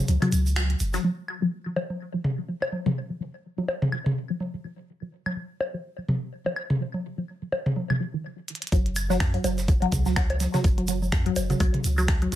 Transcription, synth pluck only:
0, 0, Header, 1, 2, 480
1, 0, Start_track
1, 0, Tempo, 480000
1, 1043, Time_signature, 4, 2, 24, 8
1, 12353, End_track
2, 0, Start_track
2, 0, Title_t, "Synth pluck"
2, 0, Program_c, 0, 84
2, 220, Note_on_c, 0, 54, 105
2, 250, Note_off_c, 0, 54, 0
2, 564, Note_on_c, 0, 54, 86
2, 622, Note_off_c, 0, 54, 0
2, 940, Note_on_c, 0, 54, 106
2, 960, Note_off_c, 0, 54, 0
2, 1042, Note_on_c, 0, 54, 84
2, 1066, Note_off_c, 0, 54, 0
2, 1420, Note_on_c, 0, 54, 98
2, 1449, Note_off_c, 0, 54, 0
2, 1661, Note_on_c, 0, 54, 76
2, 1690, Note_off_c, 0, 54, 0
2, 1763, Note_on_c, 0, 54, 77
2, 1787, Note_off_c, 0, 54, 0
2, 2139, Note_on_c, 0, 54, 100
2, 2169, Note_off_c, 0, 54, 0
2, 2380, Note_on_c, 0, 54, 74
2, 2410, Note_off_c, 0, 54, 0
2, 2483, Note_on_c, 0, 54, 85
2, 2507, Note_off_c, 0, 54, 0
2, 2860, Note_on_c, 0, 54, 100
2, 2889, Note_off_c, 0, 54, 0
2, 3101, Note_on_c, 0, 54, 75
2, 3130, Note_off_c, 0, 54, 0
2, 3203, Note_on_c, 0, 54, 73
2, 3227, Note_off_c, 0, 54, 0
2, 3581, Note_on_c, 0, 54, 103
2, 3610, Note_off_c, 0, 54, 0
2, 3821, Note_on_c, 0, 54, 75
2, 3850, Note_off_c, 0, 54, 0
2, 3924, Note_on_c, 0, 54, 77
2, 3947, Note_off_c, 0, 54, 0
2, 4302, Note_on_c, 0, 54, 96
2, 4330, Note_off_c, 0, 54, 0
2, 4540, Note_on_c, 0, 54, 75
2, 4570, Note_off_c, 0, 54, 0
2, 4643, Note_on_c, 0, 54, 74
2, 4667, Note_off_c, 0, 54, 0
2, 5020, Note_on_c, 0, 54, 96
2, 5050, Note_off_c, 0, 54, 0
2, 5261, Note_on_c, 0, 54, 78
2, 5290, Note_off_c, 0, 54, 0
2, 5364, Note_on_c, 0, 54, 85
2, 5387, Note_off_c, 0, 54, 0
2, 5740, Note_on_c, 0, 54, 98
2, 5769, Note_off_c, 0, 54, 0
2, 5981, Note_on_c, 0, 54, 76
2, 6010, Note_off_c, 0, 54, 0
2, 6083, Note_on_c, 0, 54, 71
2, 6107, Note_off_c, 0, 54, 0
2, 6460, Note_on_c, 0, 54, 101
2, 6490, Note_off_c, 0, 54, 0
2, 6700, Note_on_c, 0, 54, 78
2, 6729, Note_off_c, 0, 54, 0
2, 6802, Note_on_c, 0, 54, 88
2, 6826, Note_off_c, 0, 54, 0
2, 7179, Note_on_c, 0, 54, 100
2, 7209, Note_off_c, 0, 54, 0
2, 7420, Note_on_c, 0, 54, 74
2, 7450, Note_off_c, 0, 54, 0
2, 7523, Note_on_c, 0, 54, 74
2, 7547, Note_off_c, 0, 54, 0
2, 7900, Note_on_c, 0, 54, 102
2, 7930, Note_off_c, 0, 54, 0
2, 8002, Note_on_c, 0, 54, 101
2, 8042, Note_off_c, 0, 54, 0
2, 8140, Note_on_c, 0, 52, 104
2, 8169, Note_off_c, 0, 52, 0
2, 8722, Note_on_c, 0, 54, 83
2, 8746, Note_off_c, 0, 54, 0
2, 9100, Note_on_c, 0, 54, 102
2, 9129, Note_off_c, 0, 54, 0
2, 9341, Note_on_c, 0, 54, 77
2, 9370, Note_off_c, 0, 54, 0
2, 9442, Note_on_c, 0, 54, 77
2, 9466, Note_off_c, 0, 54, 0
2, 9819, Note_on_c, 0, 54, 105
2, 9849, Note_off_c, 0, 54, 0
2, 10060, Note_on_c, 0, 54, 80
2, 10090, Note_off_c, 0, 54, 0
2, 10162, Note_on_c, 0, 54, 89
2, 10186, Note_off_c, 0, 54, 0
2, 10539, Note_on_c, 0, 54, 103
2, 10569, Note_off_c, 0, 54, 0
2, 10779, Note_on_c, 0, 54, 77
2, 10809, Note_off_c, 0, 54, 0
2, 10882, Note_on_c, 0, 54, 79
2, 10906, Note_off_c, 0, 54, 0
2, 11260, Note_on_c, 0, 54, 107
2, 11289, Note_off_c, 0, 54, 0
2, 11500, Note_on_c, 0, 54, 78
2, 11529, Note_off_c, 0, 54, 0
2, 11602, Note_on_c, 0, 54, 83
2, 11626, Note_off_c, 0, 54, 0
2, 11979, Note_on_c, 0, 54, 103
2, 12009, Note_off_c, 0, 54, 0
2, 12220, Note_on_c, 0, 54, 79
2, 12249, Note_off_c, 0, 54, 0
2, 12323, Note_on_c, 0, 54, 73
2, 12346, Note_off_c, 0, 54, 0
2, 12353, End_track
0, 0, End_of_file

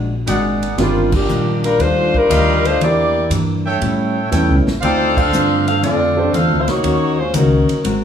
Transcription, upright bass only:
0, 0, Header, 1, 2, 480
1, 0, Start_track
1, 0, Tempo, 505476
1, 738, Time_signature, 4, 2, 24, 8
1, 7636, End_track
2, 0, Start_track
2, 0, Title_t, "Upright bass"
2, 0, Program_c, 0, 32
2, 0, Note_on_c, 0, 34, 85
2, 246, Note_off_c, 0, 34, 0
2, 257, Note_on_c, 0, 32, 101
2, 723, Note_off_c, 0, 32, 0
2, 741, Note_on_c, 0, 31, 88
2, 1205, Note_off_c, 0, 31, 0
2, 1228, Note_on_c, 0, 34, 92
2, 1689, Note_off_c, 0, 34, 0
2, 1700, Note_on_c, 0, 39, 85
2, 2165, Note_off_c, 0, 39, 0
2, 2189, Note_on_c, 0, 38, 98
2, 2649, Note_off_c, 0, 38, 0
2, 2673, Note_on_c, 0, 40, 83
2, 3132, Note_off_c, 0, 40, 0
2, 3136, Note_on_c, 0, 43, 92
2, 3603, Note_off_c, 0, 43, 0
2, 3624, Note_on_c, 0, 45, 84
2, 4087, Note_off_c, 0, 45, 0
2, 4101, Note_on_c, 0, 40, 90
2, 4262, Note_off_c, 0, 40, 0
2, 4262, Note_on_c, 0, 37, 59
2, 4420, Note_off_c, 0, 37, 0
2, 4586, Note_on_c, 0, 38, 82
2, 5048, Note_off_c, 0, 38, 0
2, 5059, Note_on_c, 0, 43, 94
2, 5524, Note_off_c, 0, 43, 0
2, 5536, Note_on_c, 0, 41, 85
2, 6003, Note_off_c, 0, 41, 0
2, 6021, Note_on_c, 0, 40, 100
2, 6174, Note_off_c, 0, 40, 0
2, 6174, Note_on_c, 0, 38, 57
2, 6328, Note_off_c, 0, 38, 0
2, 6333, Note_on_c, 0, 36, 63
2, 6484, Note_off_c, 0, 36, 0
2, 6493, Note_on_c, 0, 39, 85
2, 6961, Note_off_c, 0, 39, 0
2, 6969, Note_on_c, 0, 37, 92
2, 7278, Note_off_c, 0, 37, 0
2, 7454, Note_on_c, 0, 32, 82
2, 7636, Note_off_c, 0, 32, 0
2, 7636, End_track
0, 0, End_of_file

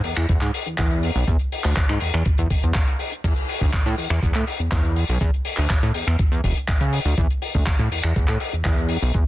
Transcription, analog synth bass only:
0, 0, Header, 1, 2, 480
1, 0, Start_track
1, 0, Tempo, 491803
1, 1246, Time_signature, 4, 2, 24, 8
1, 9052, End_track
2, 0, Start_track
2, 0, Title_t, "Analog synth bass"
2, 0, Program_c, 0, 38
2, 45, Note_on_c, 0, 40, 47
2, 143, Note_off_c, 0, 40, 0
2, 165, Note_on_c, 0, 40, 100
2, 257, Note_off_c, 0, 40, 0
2, 286, Note_on_c, 0, 40, 90
2, 379, Note_off_c, 0, 40, 0
2, 408, Note_on_c, 0, 44, 84
2, 498, Note_off_c, 0, 44, 0
2, 650, Note_on_c, 0, 40, 43
2, 743, Note_off_c, 0, 40, 0
2, 766, Note_on_c, 0, 40, 103
2, 1082, Note_off_c, 0, 40, 0
2, 1128, Note_on_c, 0, 35, 101
2, 1218, Note_off_c, 0, 35, 0
2, 1246, Note_on_c, 0, 40, 102
2, 1339, Note_off_c, 0, 40, 0
2, 1610, Note_on_c, 0, 38, 92
2, 1699, Note_off_c, 0, 38, 0
2, 1850, Note_on_c, 0, 44, 101
2, 1939, Note_off_c, 0, 44, 0
2, 1969, Note_on_c, 0, 40, 44
2, 2065, Note_off_c, 0, 40, 0
2, 2087, Note_on_c, 0, 40, 98
2, 2178, Note_off_c, 0, 40, 0
2, 2329, Note_on_c, 0, 40, 107
2, 2419, Note_off_c, 0, 40, 0
2, 2571, Note_on_c, 0, 40, 88
2, 2660, Note_off_c, 0, 40, 0
2, 3164, Note_on_c, 0, 40, 104
2, 3258, Note_off_c, 0, 40, 0
2, 3526, Note_on_c, 0, 38, 86
2, 3617, Note_off_c, 0, 38, 0
2, 3766, Note_on_c, 0, 45, 97
2, 3857, Note_off_c, 0, 45, 0
2, 3884, Note_on_c, 0, 40, 44
2, 3982, Note_off_c, 0, 40, 0
2, 4004, Note_on_c, 0, 40, 105
2, 4096, Note_off_c, 0, 40, 0
2, 4125, Note_on_c, 0, 40, 97
2, 4218, Note_off_c, 0, 40, 0
2, 4247, Note_on_c, 0, 45, 85
2, 4338, Note_off_c, 0, 45, 0
2, 4485, Note_on_c, 0, 40, 41
2, 4581, Note_off_c, 0, 40, 0
2, 4604, Note_on_c, 0, 40, 100
2, 4921, Note_off_c, 0, 40, 0
2, 4967, Note_on_c, 0, 35, 106
2, 5058, Note_off_c, 0, 35, 0
2, 5084, Note_on_c, 0, 40, 104
2, 5178, Note_off_c, 0, 40, 0
2, 5448, Note_on_c, 0, 38, 92
2, 5538, Note_off_c, 0, 38, 0
2, 5687, Note_on_c, 0, 45, 99
2, 5778, Note_off_c, 0, 45, 0
2, 5806, Note_on_c, 0, 40, 43
2, 5903, Note_off_c, 0, 40, 0
2, 5926, Note_on_c, 0, 40, 99
2, 6017, Note_off_c, 0, 40, 0
2, 6166, Note_on_c, 0, 40, 105
2, 6257, Note_off_c, 0, 40, 0
2, 6285, Note_on_c, 0, 28, 93
2, 6378, Note_off_c, 0, 28, 0
2, 6645, Note_on_c, 0, 49, 95
2, 6829, Note_off_c, 0, 49, 0
2, 6884, Note_on_c, 0, 38, 108
2, 6976, Note_off_c, 0, 38, 0
2, 7006, Note_on_c, 0, 40, 107
2, 7099, Note_off_c, 0, 40, 0
2, 7368, Note_on_c, 0, 38, 89
2, 7458, Note_off_c, 0, 38, 0
2, 7606, Note_on_c, 0, 45, 103
2, 7697, Note_off_c, 0, 45, 0
2, 7724, Note_on_c, 0, 40, 47
2, 7822, Note_off_c, 0, 40, 0
2, 7847, Note_on_c, 0, 40, 104
2, 7937, Note_off_c, 0, 40, 0
2, 7966, Note_on_c, 0, 40, 90
2, 8059, Note_off_c, 0, 40, 0
2, 8086, Note_on_c, 0, 45, 86
2, 8177, Note_off_c, 0, 45, 0
2, 8328, Note_on_c, 0, 40, 44
2, 8423, Note_off_c, 0, 40, 0
2, 8446, Note_on_c, 0, 40, 104
2, 8762, Note_off_c, 0, 40, 0
2, 8808, Note_on_c, 0, 35, 108
2, 8898, Note_off_c, 0, 35, 0
2, 8926, Note_on_c, 0, 40, 100
2, 9019, Note_off_c, 0, 40, 0
2, 9052, End_track
0, 0, End_of_file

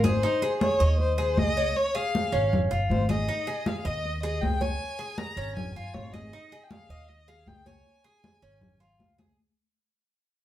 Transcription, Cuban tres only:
0, 0, Header, 1, 2, 480
1, 0, Start_track
1, 0, Tempo, 380711
1, 298, Time_signature, 4, 2, 24, 8
1, 13168, End_track
2, 0, Start_track
2, 0, Title_t, "Cuban tres"
2, 0, Program_c, 0, 25
2, 48, Note_on_c, 0, 68, 76
2, 286, Note_off_c, 0, 68, 0
2, 293, Note_on_c, 0, 63, 81
2, 528, Note_off_c, 0, 63, 0
2, 532, Note_on_c, 0, 68, 80
2, 1000, Note_off_c, 0, 68, 0
2, 1010, Note_on_c, 0, 75, 81
2, 1479, Note_off_c, 0, 75, 0
2, 1488, Note_on_c, 0, 68, 79
2, 1958, Note_off_c, 0, 68, 0
2, 1978, Note_on_c, 0, 73, 71
2, 2443, Note_off_c, 0, 73, 0
2, 2455, Note_on_c, 0, 68, 80
2, 2921, Note_off_c, 0, 68, 0
2, 2930, Note_on_c, 0, 61, 84
2, 3398, Note_off_c, 0, 61, 0
2, 3414, Note_on_c, 0, 65, 72
2, 3880, Note_off_c, 0, 65, 0
2, 3894, Note_on_c, 0, 68, 71
2, 4127, Note_off_c, 0, 68, 0
2, 4142, Note_on_c, 0, 63, 84
2, 4371, Note_off_c, 0, 63, 0
2, 4376, Note_on_c, 0, 68, 79
2, 4841, Note_off_c, 0, 68, 0
2, 4855, Note_on_c, 0, 75, 78
2, 5320, Note_off_c, 0, 75, 0
2, 5336, Note_on_c, 0, 68, 80
2, 5801, Note_off_c, 0, 68, 0
2, 5811, Note_on_c, 0, 73, 70
2, 6278, Note_off_c, 0, 73, 0
2, 6289, Note_on_c, 0, 68, 80
2, 6757, Note_off_c, 0, 68, 0
2, 6772, Note_on_c, 0, 61, 91
2, 7238, Note_off_c, 0, 61, 0
2, 7265, Note_on_c, 0, 65, 74
2, 7725, Note_off_c, 0, 65, 0
2, 7736, Note_on_c, 0, 68, 71
2, 7967, Note_off_c, 0, 68, 0
2, 7983, Note_on_c, 0, 63, 76
2, 8211, Note_off_c, 0, 63, 0
2, 8221, Note_on_c, 0, 68, 76
2, 8683, Note_off_c, 0, 68, 0
2, 8702, Note_on_c, 0, 75, 78
2, 9163, Note_off_c, 0, 75, 0
2, 9179, Note_on_c, 0, 68, 77
2, 9642, Note_off_c, 0, 68, 0
2, 9658, Note_on_c, 0, 73, 76
2, 10122, Note_off_c, 0, 73, 0
2, 10141, Note_on_c, 0, 68, 83
2, 10604, Note_off_c, 0, 68, 0
2, 10621, Note_on_c, 0, 61, 89
2, 11084, Note_off_c, 0, 61, 0
2, 11098, Note_on_c, 0, 65, 79
2, 11563, Note_off_c, 0, 65, 0
2, 11579, Note_on_c, 0, 68, 74
2, 11811, Note_off_c, 0, 68, 0
2, 13168, End_track
0, 0, End_of_file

